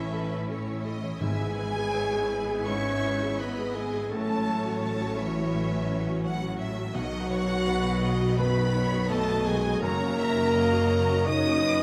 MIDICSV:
0, 0, Header, 1, 11, 480
1, 0, Start_track
1, 0, Tempo, 725514
1, 796, Time_signature, 4, 2, 24, 8
1, 2245, Tempo, 710059
1, 5125, Tempo, 722892
1, 7897, End_track
2, 0, Start_track
2, 0, Title_t, "Violin section"
2, 0, Program_c, 0, 48
2, 0, Note_on_c, 0, 76, 92
2, 562, Note_off_c, 0, 76, 0
2, 792, Note_on_c, 0, 80, 117
2, 1738, Note_off_c, 0, 80, 0
2, 1759, Note_on_c, 0, 85, 99
2, 2241, Note_off_c, 0, 85, 0
2, 2244, Note_on_c, 0, 83, 86
2, 2477, Note_on_c, 0, 80, 87
2, 2487, Note_off_c, 0, 83, 0
2, 2723, Note_off_c, 0, 80, 0
2, 2730, Note_on_c, 0, 81, 108
2, 3196, Note_off_c, 0, 81, 0
2, 3204, Note_on_c, 0, 81, 105
2, 3443, Note_off_c, 0, 81, 0
2, 3450, Note_on_c, 0, 76, 95
2, 4406, Note_off_c, 0, 76, 0
2, 4644, Note_on_c, 0, 78, 127
2, 5582, Note_off_c, 0, 78, 0
2, 5619, Note_on_c, 0, 83, 114
2, 6085, Note_on_c, 0, 81, 122
2, 6089, Note_off_c, 0, 83, 0
2, 6323, Note_off_c, 0, 81, 0
2, 6327, Note_on_c, 0, 80, 109
2, 6564, Note_off_c, 0, 80, 0
2, 6565, Note_on_c, 0, 82, 127
2, 7510, Note_off_c, 0, 82, 0
2, 7538, Note_on_c, 0, 87, 127
2, 7897, Note_off_c, 0, 87, 0
2, 7897, End_track
3, 0, Start_track
3, 0, Title_t, "Violin section"
3, 0, Program_c, 1, 48
3, 0, Note_on_c, 1, 73, 68
3, 80, Note_off_c, 1, 73, 0
3, 81, Note_on_c, 1, 71, 74
3, 320, Note_off_c, 1, 71, 0
3, 326, Note_on_c, 1, 73, 68
3, 555, Note_on_c, 1, 75, 70
3, 556, Note_off_c, 1, 73, 0
3, 795, Note_off_c, 1, 75, 0
3, 795, Note_on_c, 1, 76, 76
3, 1033, Note_on_c, 1, 71, 68
3, 1034, Note_off_c, 1, 76, 0
3, 1274, Note_off_c, 1, 71, 0
3, 1275, Note_on_c, 1, 73, 73
3, 1514, Note_on_c, 1, 71, 68
3, 1520, Note_off_c, 1, 73, 0
3, 1759, Note_on_c, 1, 76, 79
3, 1764, Note_off_c, 1, 71, 0
3, 2232, Note_on_c, 1, 75, 74
3, 2241, Note_off_c, 1, 76, 0
3, 2720, Note_on_c, 1, 73, 91
3, 2722, Note_off_c, 1, 75, 0
3, 4165, Note_off_c, 1, 73, 0
3, 4173, Note_on_c, 1, 78, 89
3, 4404, Note_off_c, 1, 78, 0
3, 4409, Note_on_c, 1, 76, 87
3, 4641, Note_off_c, 1, 76, 0
3, 4647, Note_on_c, 1, 75, 97
3, 4882, Note_on_c, 1, 73, 87
3, 4885, Note_off_c, 1, 75, 0
3, 5124, Note_off_c, 1, 73, 0
3, 5129, Note_on_c, 1, 71, 82
3, 5368, Note_off_c, 1, 71, 0
3, 5370, Note_on_c, 1, 75, 85
3, 5604, Note_on_c, 1, 71, 83
3, 5611, Note_off_c, 1, 75, 0
3, 5845, Note_off_c, 1, 71, 0
3, 5850, Note_on_c, 1, 73, 98
3, 6082, Note_on_c, 1, 75, 87
3, 6086, Note_off_c, 1, 73, 0
3, 6559, Note_on_c, 1, 73, 98
3, 6561, Note_off_c, 1, 75, 0
3, 6793, Note_off_c, 1, 73, 0
3, 6803, Note_on_c, 1, 76, 88
3, 7040, Note_off_c, 1, 76, 0
3, 7046, Note_on_c, 1, 75, 83
3, 7526, Note_on_c, 1, 73, 85
3, 7531, Note_off_c, 1, 75, 0
3, 7766, Note_on_c, 1, 71, 95
3, 7767, Note_off_c, 1, 73, 0
3, 7897, Note_off_c, 1, 71, 0
3, 7897, End_track
4, 0, Start_track
4, 0, Title_t, "Clarinet"
4, 0, Program_c, 2, 71
4, 0, Note_on_c, 2, 64, 79
4, 559, Note_off_c, 2, 64, 0
4, 795, Note_on_c, 2, 68, 102
4, 1764, Note_on_c, 2, 73, 105
4, 1774, Note_off_c, 2, 68, 0
4, 2247, Note_on_c, 2, 71, 84
4, 2257, Note_off_c, 2, 73, 0
4, 2488, Note_on_c, 2, 68, 91
4, 2498, Note_off_c, 2, 71, 0
4, 2726, Note_on_c, 2, 69, 96
4, 2736, Note_off_c, 2, 68, 0
4, 3200, Note_off_c, 2, 69, 0
4, 3204, Note_on_c, 2, 69, 81
4, 3452, Note_on_c, 2, 64, 82
4, 3462, Note_off_c, 2, 69, 0
4, 4406, Note_off_c, 2, 64, 0
4, 4648, Note_on_c, 2, 66, 116
4, 5584, Note_off_c, 2, 66, 0
4, 5612, Note_on_c, 2, 71, 105
4, 6076, Note_off_c, 2, 71, 0
4, 6083, Note_on_c, 2, 69, 102
4, 6324, Note_on_c, 2, 68, 100
4, 6334, Note_off_c, 2, 69, 0
4, 6559, Note_on_c, 2, 70, 120
4, 6569, Note_off_c, 2, 68, 0
4, 7524, Note_on_c, 2, 75, 120
4, 7534, Note_off_c, 2, 70, 0
4, 7897, Note_off_c, 2, 75, 0
4, 7897, End_track
5, 0, Start_track
5, 0, Title_t, "Felt piano"
5, 0, Program_c, 3, 0
5, 0, Control_c, 3, 64, 127
5, 0, Note_on_c, 3, 45, 62
5, 0, Note_on_c, 3, 52, 52
5, 0, Note_on_c, 3, 64, 48
5, 0, Note_on_c, 3, 69, 54
5, 0, Note_on_c, 3, 73, 53
5, 86, Note_off_c, 3, 69, 0
5, 86, Note_on_c, 3, 69, 53
5, 156, Note_off_c, 3, 64, 0
5, 209, Note_off_c, 3, 73, 0
5, 209, Note_on_c, 3, 73, 53
5, 275, Note_off_c, 3, 69, 0
5, 328, Note_on_c, 3, 69, 54
5, 395, Note_off_c, 3, 73, 0
5, 445, Note_on_c, 3, 73, 52
5, 514, Note_off_c, 3, 69, 0
5, 559, Note_on_c, 3, 69, 49
5, 632, Note_off_c, 3, 73, 0
5, 684, Note_on_c, 3, 73, 59
5, 749, Note_off_c, 3, 69, 0
5, 800, Note_off_c, 3, 73, 0
5, 805, Note_on_c, 3, 44, 63
5, 809, Control_c, 3, 64, 0
5, 812, Note_off_c, 3, 45, 0
5, 812, Note_off_c, 3, 52, 0
5, 907, Control_c, 3, 64, 127
5, 927, Note_on_c, 3, 64, 55
5, 1050, Note_on_c, 3, 71, 55
5, 1112, Note_off_c, 3, 64, 0
5, 1166, Note_on_c, 3, 68, 52
5, 1234, Note_off_c, 3, 71, 0
5, 1286, Note_on_c, 3, 71, 55
5, 1353, Note_off_c, 3, 68, 0
5, 1406, Note_on_c, 3, 68, 55
5, 1476, Note_off_c, 3, 71, 0
5, 1529, Note_on_c, 3, 71, 54
5, 1600, Note_off_c, 3, 68, 0
5, 1646, Note_on_c, 3, 68, 57
5, 1722, Note_off_c, 3, 71, 0
5, 1744, Note_off_c, 3, 44, 0
5, 1772, Note_on_c, 3, 44, 62
5, 1840, Note_off_c, 3, 68, 0
5, 1897, Note_on_c, 3, 64, 55
5, 2016, Note_on_c, 3, 71, 49
5, 2083, Note_off_c, 3, 64, 0
5, 2134, Note_on_c, 3, 68, 54
5, 2201, Note_off_c, 3, 71, 0
5, 2248, Note_on_c, 3, 71, 59
5, 2322, Note_off_c, 3, 68, 0
5, 2371, Note_on_c, 3, 68, 57
5, 2440, Note_off_c, 3, 71, 0
5, 2489, Note_on_c, 3, 71, 56
5, 2563, Note_off_c, 3, 68, 0
5, 2611, Note_on_c, 3, 68, 60
5, 2681, Note_off_c, 3, 71, 0
5, 2705, Note_off_c, 3, 44, 0
5, 2730, Note_off_c, 3, 68, 0
5, 2733, Note_on_c, 3, 45, 72
5, 2741, Control_c, 3, 64, 0
5, 2836, Control_c, 3, 64, 127
5, 2849, Note_on_c, 3, 61, 56
5, 2967, Note_on_c, 3, 73, 55
5, 3041, Note_off_c, 3, 61, 0
5, 3090, Note_on_c, 3, 66, 57
5, 3161, Note_off_c, 3, 73, 0
5, 3212, Note_on_c, 3, 73, 60
5, 3283, Note_off_c, 3, 66, 0
5, 3335, Note_on_c, 3, 66, 60
5, 3404, Note_off_c, 3, 73, 0
5, 3453, Note_on_c, 3, 73, 61
5, 3525, Note_off_c, 3, 66, 0
5, 3572, Note_on_c, 3, 66, 59
5, 3644, Note_off_c, 3, 73, 0
5, 3667, Note_off_c, 3, 45, 0
5, 3693, Note_on_c, 3, 45, 71
5, 3763, Note_off_c, 3, 66, 0
5, 3809, Note_on_c, 3, 61, 57
5, 3931, Note_on_c, 3, 73, 60
5, 4001, Note_off_c, 3, 61, 0
5, 4053, Note_on_c, 3, 66, 60
5, 4121, Note_off_c, 3, 73, 0
5, 4171, Note_on_c, 3, 73, 64
5, 4241, Note_off_c, 3, 66, 0
5, 4288, Note_on_c, 3, 66, 59
5, 4359, Note_off_c, 3, 73, 0
5, 4407, Note_on_c, 3, 73, 57
5, 4478, Note_off_c, 3, 66, 0
5, 4528, Note_on_c, 3, 66, 64
5, 4597, Note_off_c, 3, 73, 0
5, 4618, Note_off_c, 3, 45, 0
5, 4646, Note_off_c, 3, 66, 0
5, 4648, Note_on_c, 3, 35, 82
5, 4656, Control_c, 3, 64, 0
5, 4771, Note_on_c, 3, 63, 60
5, 4780, Control_c, 3, 64, 127
5, 4893, Note_on_c, 3, 71, 63
5, 4960, Note_off_c, 3, 63, 0
5, 5007, Note_on_c, 3, 66, 60
5, 5081, Note_off_c, 3, 71, 0
5, 5126, Note_on_c, 3, 71, 60
5, 5198, Note_off_c, 3, 66, 0
5, 5246, Note_on_c, 3, 66, 66
5, 5318, Note_off_c, 3, 71, 0
5, 5370, Note_on_c, 3, 71, 63
5, 5440, Note_off_c, 3, 66, 0
5, 5494, Note_on_c, 3, 66, 68
5, 5562, Note_off_c, 3, 71, 0
5, 5584, Note_off_c, 3, 35, 0
5, 5614, Note_on_c, 3, 42, 65
5, 5684, Note_off_c, 3, 66, 0
5, 5733, Note_on_c, 3, 63, 64
5, 5802, Note_off_c, 3, 42, 0
5, 5856, Note_on_c, 3, 71, 65
5, 5920, Note_off_c, 3, 63, 0
5, 5967, Note_on_c, 3, 66, 68
5, 6041, Note_off_c, 3, 71, 0
5, 6085, Note_on_c, 3, 71, 70
5, 6156, Note_off_c, 3, 66, 0
5, 6209, Note_on_c, 3, 66, 67
5, 6275, Note_off_c, 3, 71, 0
5, 6330, Note_on_c, 3, 71, 62
5, 6397, Note_off_c, 3, 66, 0
5, 6447, Note_on_c, 3, 66, 73
5, 6518, Note_off_c, 3, 71, 0
5, 6564, Note_off_c, 3, 66, 0
5, 6569, Note_on_c, 3, 42, 83
5, 6575, Control_c, 3, 64, 0
5, 6678, Control_c, 3, 64, 127
5, 6687, Note_on_c, 3, 61, 64
5, 6804, Note_on_c, 3, 73, 61
5, 6874, Note_off_c, 3, 61, 0
5, 6927, Note_on_c, 3, 66, 60
5, 6992, Note_off_c, 3, 73, 0
5, 7042, Note_on_c, 3, 73, 68
5, 7115, Note_off_c, 3, 66, 0
5, 7164, Note_on_c, 3, 66, 68
5, 7235, Note_off_c, 3, 73, 0
5, 7286, Note_on_c, 3, 73, 63
5, 7359, Note_off_c, 3, 66, 0
5, 7406, Note_on_c, 3, 66, 69
5, 7481, Note_off_c, 3, 73, 0
5, 7504, Note_off_c, 3, 42, 0
5, 7530, Note_on_c, 3, 49, 64
5, 7600, Note_off_c, 3, 66, 0
5, 7652, Note_on_c, 3, 61, 60
5, 7721, Note_off_c, 3, 49, 0
5, 7770, Note_on_c, 3, 73, 65
5, 7842, Note_off_c, 3, 61, 0
5, 7897, Note_off_c, 3, 73, 0
5, 7897, End_track
6, 0, Start_track
6, 0, Title_t, "Harp"
6, 0, Program_c, 4, 46
6, 0, Note_on_c, 4, 45, 65
6, 0, Note_on_c, 4, 52, 46
6, 0, Note_on_c, 4, 61, 60
6, 0, Note_on_c, 4, 64, 57
6, 0, Note_on_c, 4, 69, 55
6, 0, Note_on_c, 4, 73, 56
6, 0, Note_on_c, 4, 81, 57
6, 85, Note_off_c, 4, 69, 0
6, 93, Note_on_c, 4, 69, 54
6, 203, Note_off_c, 4, 64, 0
6, 210, Note_on_c, 4, 64, 54
6, 320, Note_off_c, 4, 61, 0
6, 328, Note_on_c, 4, 61, 59
6, 436, Note_off_c, 4, 52, 0
6, 444, Note_on_c, 4, 52, 44
6, 552, Note_off_c, 4, 61, 0
6, 560, Note_on_c, 4, 61, 56
6, 671, Note_off_c, 4, 52, 0
6, 679, Note_on_c, 4, 52, 52
6, 798, Note_on_c, 4, 44, 66
6, 816, Note_off_c, 4, 52, 0
6, 816, Note_off_c, 4, 61, 0
6, 818, Note_off_c, 4, 45, 0
6, 819, Note_off_c, 4, 69, 0
6, 820, Note_off_c, 4, 73, 0
6, 820, Note_off_c, 4, 81, 0
6, 917, Note_on_c, 4, 56, 49
6, 1035, Note_on_c, 4, 59, 60
6, 1147, Note_off_c, 4, 64, 0
6, 1155, Note_on_c, 4, 64, 53
6, 1278, Note_on_c, 4, 71, 56
6, 1387, Note_off_c, 4, 64, 0
6, 1395, Note_on_c, 4, 64, 58
6, 1520, Note_on_c, 4, 80, 60
6, 1645, Note_on_c, 4, 83, 59
6, 1884, Note_off_c, 4, 71, 0
6, 1892, Note_on_c, 4, 71, 58
6, 2002, Note_off_c, 4, 64, 0
6, 2010, Note_on_c, 4, 64, 58
6, 2120, Note_off_c, 4, 59, 0
6, 2128, Note_on_c, 4, 59, 55
6, 2238, Note_off_c, 4, 56, 0
6, 2246, Note_on_c, 4, 56, 54
6, 2364, Note_off_c, 4, 59, 0
6, 2372, Note_on_c, 4, 59, 53
6, 2483, Note_off_c, 4, 56, 0
6, 2491, Note_on_c, 4, 56, 57
6, 2600, Note_off_c, 4, 59, 0
6, 2608, Note_on_c, 4, 59, 54
6, 2730, Note_on_c, 4, 45, 67
6, 2748, Note_off_c, 4, 59, 0
6, 2748, Note_off_c, 4, 80, 0
6, 2749, Note_off_c, 4, 44, 0
6, 2749, Note_off_c, 4, 83, 0
6, 2750, Note_off_c, 4, 56, 0
6, 2750, Note_off_c, 4, 64, 0
6, 2750, Note_off_c, 4, 71, 0
6, 2851, Note_on_c, 4, 57, 54
6, 2972, Note_on_c, 4, 54, 62
6, 3091, Note_on_c, 4, 61, 63
6, 3211, Note_on_c, 4, 73, 61
6, 3331, Note_on_c, 4, 66, 60
6, 3446, Note_off_c, 4, 73, 0
6, 3454, Note_on_c, 4, 73, 59
6, 3574, Note_on_c, 4, 85, 66
6, 3683, Note_off_c, 4, 73, 0
6, 3691, Note_on_c, 4, 73, 70
6, 3802, Note_off_c, 4, 66, 0
6, 3810, Note_on_c, 4, 66, 69
6, 3921, Note_off_c, 4, 73, 0
6, 3929, Note_on_c, 4, 73, 60
6, 4039, Note_off_c, 4, 61, 0
6, 4047, Note_on_c, 4, 61, 60
6, 4158, Note_off_c, 4, 54, 0
6, 4167, Note_on_c, 4, 54, 63
6, 4278, Note_off_c, 4, 57, 0
6, 4286, Note_on_c, 4, 57, 56
6, 4396, Note_off_c, 4, 54, 0
6, 4404, Note_on_c, 4, 54, 68
6, 4517, Note_off_c, 4, 57, 0
6, 4525, Note_on_c, 4, 57, 59
6, 4643, Note_on_c, 4, 47, 77
6, 4662, Note_off_c, 4, 61, 0
6, 4663, Note_off_c, 4, 73, 0
6, 4664, Note_off_c, 4, 45, 0
6, 4664, Note_off_c, 4, 57, 0
6, 4665, Note_off_c, 4, 85, 0
6, 4763, Note_on_c, 4, 59, 55
6, 4877, Note_off_c, 4, 54, 0
6, 4885, Note_on_c, 4, 54, 70
6, 5007, Note_on_c, 4, 63, 61
6, 5129, Note_on_c, 4, 71, 68
6, 5240, Note_off_c, 4, 66, 0
6, 5248, Note_on_c, 4, 66, 66
6, 5369, Note_on_c, 4, 75, 68
6, 5491, Note_on_c, 4, 83, 72
6, 5605, Note_off_c, 4, 75, 0
6, 5613, Note_on_c, 4, 75, 74
6, 5721, Note_off_c, 4, 66, 0
6, 5729, Note_on_c, 4, 66, 72
6, 5840, Note_off_c, 4, 71, 0
6, 5848, Note_on_c, 4, 71, 64
6, 5960, Note_off_c, 4, 63, 0
6, 5968, Note_on_c, 4, 63, 67
6, 6075, Note_off_c, 4, 54, 0
6, 6083, Note_on_c, 4, 54, 74
6, 6198, Note_off_c, 4, 59, 0
6, 6206, Note_on_c, 4, 59, 60
6, 6313, Note_off_c, 4, 54, 0
6, 6321, Note_on_c, 4, 54, 73
6, 6435, Note_off_c, 4, 59, 0
6, 6443, Note_on_c, 4, 59, 59
6, 6562, Note_on_c, 4, 42, 80
6, 6580, Note_off_c, 4, 47, 0
6, 6581, Note_off_c, 4, 59, 0
6, 6581, Note_off_c, 4, 71, 0
6, 6582, Note_off_c, 4, 63, 0
6, 6583, Note_off_c, 4, 75, 0
6, 6583, Note_off_c, 4, 83, 0
6, 6683, Note_on_c, 4, 49, 55
6, 6792, Note_off_c, 4, 54, 0
6, 6800, Note_on_c, 4, 54, 74
6, 6920, Note_on_c, 4, 61, 68
6, 7151, Note_off_c, 4, 66, 0
6, 7159, Note_on_c, 4, 66, 71
6, 7278, Note_on_c, 4, 73, 75
6, 7406, Note_on_c, 4, 85, 72
6, 7521, Note_off_c, 4, 73, 0
6, 7529, Note_on_c, 4, 73, 73
6, 7639, Note_off_c, 4, 66, 0
6, 7647, Note_on_c, 4, 66, 79
6, 7761, Note_off_c, 4, 73, 0
6, 7768, Note_on_c, 4, 73, 72
6, 7879, Note_off_c, 4, 61, 0
6, 7897, Note_off_c, 4, 42, 0
6, 7897, Note_off_c, 4, 49, 0
6, 7897, Note_off_c, 4, 54, 0
6, 7897, Note_off_c, 4, 66, 0
6, 7897, Note_off_c, 4, 73, 0
6, 7897, Note_off_c, 4, 85, 0
6, 7897, End_track
7, 0, Start_track
7, 0, Title_t, "Viola section"
7, 0, Program_c, 5, 48
7, 0, Note_on_c, 5, 61, 62
7, 0, Note_on_c, 5, 64, 67
7, 795, Note_off_c, 5, 61, 0
7, 800, Note_on_c, 5, 59, 62
7, 2701, Note_off_c, 5, 64, 0
7, 2730, Note_on_c, 5, 61, 72
7, 2731, Note_off_c, 5, 59, 0
7, 2733, Note_on_c, 5, 54, 69
7, 4618, Note_off_c, 5, 61, 0
7, 4648, Note_on_c, 5, 51, 76
7, 6537, Note_off_c, 5, 54, 0
7, 6565, Note_on_c, 5, 54, 81
7, 7013, Note_off_c, 5, 51, 0
7, 7039, Note_on_c, 5, 61, 80
7, 7897, Note_off_c, 5, 54, 0
7, 7897, Note_off_c, 5, 61, 0
7, 7897, End_track
8, 0, Start_track
8, 0, Title_t, "French horn section"
8, 0, Program_c, 6, 60
8, 0, Note_on_c, 6, 52, 65
8, 560, Note_off_c, 6, 52, 0
8, 788, Note_on_c, 6, 56, 91
8, 1736, Note_off_c, 6, 56, 0
8, 1763, Note_on_c, 6, 61, 94
8, 2242, Note_off_c, 6, 61, 0
8, 2244, Note_on_c, 6, 59, 80
8, 2487, Note_off_c, 6, 59, 0
8, 2493, Note_on_c, 6, 56, 81
8, 2723, Note_on_c, 6, 57, 97
8, 2732, Note_off_c, 6, 56, 0
8, 3198, Note_off_c, 6, 57, 0
8, 3217, Note_on_c, 6, 57, 85
8, 3449, Note_on_c, 6, 52, 84
8, 3450, Note_off_c, 6, 57, 0
8, 4405, Note_off_c, 6, 52, 0
8, 4648, Note_on_c, 6, 54, 92
8, 5584, Note_off_c, 6, 54, 0
8, 5604, Note_on_c, 6, 59, 96
8, 6082, Note_off_c, 6, 59, 0
8, 6082, Note_on_c, 6, 57, 92
8, 6322, Note_off_c, 6, 57, 0
8, 6328, Note_on_c, 6, 56, 99
8, 6547, Note_on_c, 6, 58, 121
8, 6565, Note_off_c, 6, 56, 0
8, 7520, Note_off_c, 6, 58, 0
8, 7526, Note_on_c, 6, 63, 112
8, 7897, Note_off_c, 6, 63, 0
8, 7897, End_track
9, 0, Start_track
9, 0, Title_t, "Cello section"
9, 0, Program_c, 7, 48
9, 0, Note_on_c, 7, 45, 74
9, 771, Note_off_c, 7, 45, 0
9, 798, Note_on_c, 7, 44, 75
9, 2703, Note_off_c, 7, 44, 0
9, 2732, Note_on_c, 7, 45, 76
9, 4619, Note_off_c, 7, 45, 0
9, 4647, Note_on_c, 7, 47, 88
9, 6536, Note_off_c, 7, 47, 0
9, 6566, Note_on_c, 7, 42, 87
9, 7897, Note_off_c, 7, 42, 0
9, 7897, End_track
10, 0, Start_track
10, 0, Title_t, "Timpani"
10, 0, Program_c, 8, 47
10, 800, Note_on_c, 8, 44, 91
10, 1495, Note_off_c, 8, 44, 0
10, 7897, End_track
11, 0, Start_track
11, 0, Title_t, "Double bass section"
11, 0, Program_c, 10, 48
11, 0, Note_on_c, 10, 33, 78
11, 771, Note_off_c, 10, 33, 0
11, 797, Note_on_c, 10, 32, 72
11, 2702, Note_off_c, 10, 32, 0
11, 2729, Note_on_c, 10, 33, 86
11, 4618, Note_off_c, 10, 33, 0
11, 4646, Note_on_c, 10, 35, 96
11, 6536, Note_off_c, 10, 35, 0
11, 6561, Note_on_c, 10, 30, 104
11, 7897, Note_off_c, 10, 30, 0
11, 7897, End_track
0, 0, End_of_file